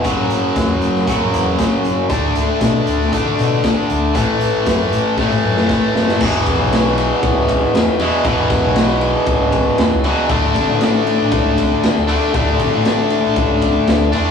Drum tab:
CC |----------------|----------------|----------------|x---------------|
RD |----------------|----------------|----------------|--x-x-x-x-x-x-x-|
HH |x-x-x-x-x-x-x-x-|x-x-x-x-x-x-x-x-|x-x-x-x---------|----------------|
SD |----o--o----o---|----o--o----o---|----o---oo-oo-oo|----o-------o---|
BD |o---o---o---o---|o---o---o---o---|o---o---o---o---|o-o-----o-o-----|

CC |----------------|----------------|----------------|
RD |x-x-x-x-x-x-x-x-|x-x-x-x-x-x-x-x-|x-x-x-x-x-x-x-x-|
HH |----------------|----------------|----------------|
SD |--o-o-------o---|----o-------o---|----o-------o---|
BD |o-o-----o-o-----|o-o-----o-o-----|o-o-----o-o-----|